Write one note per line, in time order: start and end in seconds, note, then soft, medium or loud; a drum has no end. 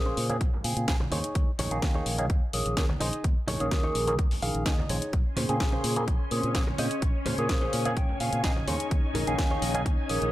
0.00 0.11 A#1 medium
0.00 0.26 C#3 medium
0.00 0.26 A#3 medium
0.00 0.27 G#4 medium
0.00 0.27 C5 medium
0.06 0.17 C#4 medium
0.06 0.17 G#4 medium
0.06 0.17 C5 medium
0.17 0.42 A#2 loud
0.17 open hi-hat loud
0.29 0.35 C#3 medium
0.29 0.35 A#3 medium
0.29 0.36 C4 medium
0.29 0.36 G#4 loud
0.29 muted clean electric guitar stroke soft
0.29 closed hi-hat medium
0.29 high conga medium
0.29 shaker medium
0.41 0.50 A#1 loud
0.41 muted clean electric guitar stroke soft
0.41 kick loud
0.41 closed hi-hat medium
0.53 low conga medium
0.53 shaker soft
0.64 0.73 A#2 medium
0.64 0.85 C#3 medium
0.64 0.85 A#3 medium
0.64 0.85 C4 medium
0.64 0.86 G#4 medium
0.64 open hi-hat loud
0.77 0.85 A#2 medium
0.77 closed hi-hat medium
0.87 1.05 A#1 medium
0.87 0.94 C#3 medium
0.87 0.94 A#3 medium
0.87 0.95 C4 medium
0.87 0.95 G#4 loud
0.87 kick loud
0.87 snare loud
0.87 closed hi-hat medium
1.00 muted clean electric guitar stroke medium
1.00 high conga medium
1.00 shaker soft
1.11 1.20 D#2 medium
1.11 1.18 D#3 medium
1.11 1.18 A#3 medium
1.11 1.18 C#4 medium
1.11 1.50 D#4 medium
1.11 1.50 G#4 medium
1.11 1.18 C5 medium
1.11 1.50 C#5 medium
1.11 open hi-hat loud
1.11 low conga medium
1.24 closed hi-hat medium
1.24 shaker medium
1.35 1.44 D#2 medium
1.35 kick loud
1.35 closed hi-hat medium
1.59 1.68 A#1 loud
1.59 1.77 D#4 loud
1.59 1.77 G#4 medium
1.59 1.77 C#5 loud
1.59 open hi-hat loud
1.59 high conga medium
1.59 low conga medium
1.71 1.79 A#1 medium
1.71 1.80 D#3 medium
1.71 1.80 A#3 medium
1.71 1.80 C#4 medium
1.71 1.80 G#4 loud
1.71 closed hi-hat medium
1.71 shaker medium
1.82 2.00 D#2 medium
1.82 2.15 D#3 medium
1.82 2.16 C#4 medium
1.82 2.16 G#4 medium
1.82 kick loud
1.82 snare loud
1.82 closed hi-hat medium
1.82 shaker medium
1.95 2.06 D#4 medium
1.95 2.06 G#4 medium
1.95 2.06 C#5 medium
2.06 2.30 A#1 loud
2.06 open hi-hat loud
2.18 2.24 D#3 medium
2.18 2.24 A#3 medium
2.18 2.25 C#4 medium
2.18 2.25 G#4 loud
2.18 muted clean electric guitar stroke soft
2.18 closed hi-hat soft
2.18 high conga medium
2.18 shaker medium
2.30 2.39 D#2 medium
2.30 muted clean electric guitar stroke soft
2.30 kick loud
2.30 closed hi-hat medium
2.42 shaker soft
2.53 2.62 A#1 medium
2.53 2.74 D#3 medium
2.53 2.74 A#3 medium
2.53 2.74 C#4 medium
2.53 2.75 G#4 medium
2.53 open hi-hat loud
2.66 2.74 A#1 medium
2.66 closed hi-hat soft
2.77 2.94 D#2 medium
2.77 2.83 D#3 medium
2.77 2.84 A#3 medium
2.77 2.84 C#4 medium
2.77 2.84 G#4 medium
2.77 kick loud
2.77 snare loud
2.77 closed hi-hat medium
2.89 muted clean electric guitar stroke medium
2.89 high conga loud
2.89 shaker soft
3.00 3.10 A#1 loud
3.00 3.07 D#3 medium
3.00 3.07 A#3 medium
3.00 3.07 C#4 medium
3.00 3.24 D#4 loud
3.00 3.24 G#4 medium
3.00 3.07 C5 medium
3.00 3.25 D#5 loud
3.00 open hi-hat loud
3.13 closed hi-hat medium
3.13 shaker medium
3.24 3.33 D#2 loud
3.24 kick loud
3.24 closed hi-hat medium
3.37 shaker soft
3.47 3.57 A#1 loud
3.47 3.66 D#4 loud
3.47 3.66 G#4 medium
3.47 3.66 C#5 loud
3.47 open hi-hat loud
3.47 high conga medium
3.47 low conga medium
3.60 3.68 A#1 medium
3.60 3.69 D#3 medium
3.60 3.69 A#3 medium
3.60 3.69 C#4 medium
3.60 3.69 G#4 medium
3.60 closed hi-hat soft
3.60 shaker medium
3.71 3.89 D#2 medium
3.71 4.04 D#3 medium
3.71 4.05 A#3 medium
3.71 4.05 C#4 medium
3.71 4.05 G#4 medium
3.71 kick loud
3.71 snare loud
3.71 closed hi-hat medium
3.83 3.95 D#4 medium
3.83 3.95 G#4 medium
3.83 3.95 C#5 medium
3.95 4.19 A#1 loud
3.95 open hi-hat loud
4.07 4.13 D#3 medium
4.07 4.13 A#3 medium
4.07 4.14 C#4 medium
4.07 4.14 G#4 loud
4.07 muted clean electric guitar stroke soft
4.07 closed hi-hat medium
4.07 high conga medium
4.07 shaker medium
4.19 4.28 D#2 loud
4.19 muted clean electric guitar stroke soft
4.19 kick loud
4.19 closed hi-hat medium
4.31 open hi-hat medium
4.31 low conga medium
4.31 shaker soft
4.42 4.51 A#1 medium
4.42 4.63 D#3 medium
4.42 4.63 A#3 medium
4.42 4.63 C#4 medium
4.42 4.64 G#4 medium
4.42 4.64 F5 medium
4.42 open hi-hat loud
4.55 4.63 A#1 medium
4.55 closed hi-hat soft
4.66 4.83 D#2 medium
4.66 4.72 D#3 medium
4.66 4.73 A#3 medium
4.66 4.73 C#4 medium
4.66 4.73 G#4 loud
4.66 5.10 D#5 medium
4.66 kick loud
4.66 snare loud
4.66 closed hi-hat medium
4.78 muted clean electric guitar stroke medium
4.78 high conga loud
4.78 shaker soft
4.89 4.98 A#1 loud
4.89 4.96 D#3 medium
4.89 4.96 A#3 medium
4.89 4.96 C#4 medium
4.89 5.13 D#4 loud
4.89 5.13 G#4 medium
4.89 4.96 C5 medium
4.89 5.14 C#5 loud
4.89 open hi-hat loud
4.89 low conga medium
5.02 closed hi-hat medium
5.02 shaker medium
5.13 5.22 A#1 loud
5.13 8.64 C#4 medium
5.13 10.32 G#5 medium
5.13 7.00 C6 medium
5.13 kick loud
5.13 closed hi-hat medium
5.13 shaker medium
5.26 shaker soft
5.36 5.46 A#2 loud
5.36 5.55 C#4 loud
5.36 5.55 G#4 medium
5.36 5.55 C5 loud
5.36 open hi-hat loud
5.36 high conga medium
5.36 low conga medium
5.49 5.57 A#2 medium
5.49 5.58 C#3 medium
5.49 5.58 A#3 medium
5.49 5.58 C4 medium
5.49 5.58 G#4 medium
5.49 closed hi-hat soft
5.49 shaker medium
5.60 5.78 A#1 medium
5.60 kick loud
5.60 snare loud
5.60 closed hi-hat medium
5.73 5.84 C#4 medium
5.73 5.84 G#4 medium
5.73 5.84 C5 medium
5.84 6.09 A#2 loud
5.84 open hi-hat loud
5.96 6.02 C#3 medium
5.96 6.02 A#3 medium
5.96 6.02 C4 medium
5.96 6.03 G#4 loud
5.96 muted clean electric guitar stroke soft
5.96 closed hi-hat medium
5.96 high conga medium
5.96 shaker medium
6.08 6.17 A#1 loud
6.08 muted clean electric guitar stroke soft
6.08 kick loud
6.08 closed hi-hat medium
6.08 shaker medium
6.31 6.40 A#2 medium
6.31 6.52 C#3 medium
6.31 6.52 A#3 medium
6.31 6.52 C4 medium
6.31 6.52 G#4 medium
6.31 open hi-hat loud
6.43 6.52 A#2 medium
6.43 closed hi-hat soft
6.54 6.72 A#1 loud
6.54 6.61 C#3 medium
6.54 6.61 A#3 medium
6.54 6.62 C4 medium
6.54 6.62 G#4 loud
6.54 kick loud
6.54 snare loud
6.54 closed hi-hat medium
6.67 muted clean electric guitar stroke medium
6.67 high conga medium
6.67 shaker soft
6.78 6.87 A#2 loud
6.78 6.85 C#3 medium
6.78 6.85 A#3 medium
6.78 6.85 C4 medium
6.78 7.02 C#4 loud
6.78 7.02 G#4 medium
6.78 6.85 C5 medium
6.78 7.03 D#5 loud
6.78 open hi-hat loud
6.91 closed hi-hat medium
6.91 shaker medium
7.02 7.11 A#1 loud
7.02 kick loud
7.02 closed hi-hat medium
7.15 shaker soft
7.26 7.35 A#2 loud
7.26 7.44 C#4 loud
7.26 7.44 G#4 medium
7.26 7.44 C5 loud
7.26 open hi-hat loud
7.26 high conga medium
7.26 low conga medium
7.38 7.46 A#2 medium
7.38 7.47 C#3 medium
7.38 7.47 A#3 medium
7.38 7.47 C4 medium
7.38 7.47 G#4 medium
7.38 closed hi-hat soft
7.38 shaker medium
7.49 7.67 A#1 medium
7.49 7.82 C#3 medium
7.49 7.83 C5 medium
7.49 kick loud
7.49 snare loud
7.49 closed hi-hat medium
7.62 7.73 C#4 medium
7.62 7.73 G#4 medium
7.62 7.73 C5 loud
7.73 7.98 A#2 loud
7.73 7.95 G#5 medium
7.73 open hi-hat loud
7.85 7.91 C#3 medium
7.85 7.91 A#3 medium
7.85 7.91 C4 medium
7.85 7.92 G#4 loud
7.85 muted clean electric guitar stroke soft
7.85 closed hi-hat medium
7.85 high conga medium
7.85 shaker medium
7.97 8.06 A#1 loud
7.97 8.19 G5 medium
7.97 muted clean electric guitar stroke soft
7.97 kick loud
7.97 closed hi-hat medium
7.97 shaker medium
8.09 low conga medium
8.09 shaker soft
8.20 8.29 A#2 medium
8.20 8.41 C#3 medium
8.20 8.41 A#3 medium
8.20 8.41 C4 medium
8.20 8.42 G#4 medium
8.20 8.42 F5 medium
8.20 open hi-hat loud
8.33 8.41 A#2 medium
8.33 closed hi-hat medium
8.44 8.61 A#1 loud
8.44 8.50 C#3 medium
8.44 8.51 A#3 medium
8.44 8.51 C4 medium
8.44 8.51 G#4 loud
8.44 8.66 D#5 medium
8.44 kick loud
8.44 snare loud
8.44 closed hi-hat medium
8.56 muted clean electric guitar stroke medium
8.56 high conga medium
8.56 shaker soft
8.67 8.76 D#2 loud
8.67 8.74 D#3 medium
8.67 8.74 A#3 medium
8.67 10.32 C#4 medium
8.67 8.74 C#4 medium
8.67 10.32 D#4 medium
8.67 9.06 D#4 medium
8.67 9.06 G#4 medium
8.67 8.74 C5 medium
8.67 9.06 C#5 loud
8.67 open hi-hat loud
8.67 low conga medium
8.80 closed hi-hat medium
8.80 shaker medium
8.91 9.00 D#2 loud
8.91 kick loud
8.91 closed hi-hat medium
8.91 shaker medium
9.04 shaker soft
9.14 9.24 A#1 loud
9.14 9.33 D#4 loud
9.14 9.33 G#4 medium
9.14 9.33 A#4 loud
9.14 open hi-hat loud
9.14 high conga medium
9.14 low conga loud
9.27 9.35 A#1 medium
9.27 9.36 D#3 medium
9.27 9.36 A#3 medium
9.27 9.36 C#4 medium
9.27 9.36 G#4 loud
9.27 closed hi-hat medium
9.27 shaker medium
9.38 9.56 D#2 medium
9.38 9.71 D#3 medium
9.38 9.71 A#3 medium
9.38 9.72 C#4 medium
9.38 9.72 G#4 medium
9.38 kick loud
9.38 snare loud
9.38 closed hi-hat medium
9.51 9.62 D#4 medium
9.51 9.62 G#4 medium
9.51 9.62 C#5 medium
9.62 9.86 A#1 loud
9.62 open hi-hat loud
9.74 9.80 D#3 medium
9.74 9.80 A#3 medium
9.74 9.81 C#4 medium
9.74 9.81 G#4 loud
9.74 muted clean electric guitar stroke soft
9.74 closed hi-hat medium
9.74 high conga medium
9.74 shaker medium
9.86 9.95 D#2 loud
9.86 muted clean electric guitar stroke soft
9.86 kick loud
9.86 closed hi-hat medium
9.98 shaker soft
10.09 10.18 A#1 medium
10.09 10.30 D#3 medium
10.09 10.30 A#3 medium
10.09 10.30 C#4 medium
10.09 10.31 G#4 medium
10.09 open hi-hat loud
10.22 10.30 A#1 medium
10.22 closed hi-hat medium
10.22 shaker medium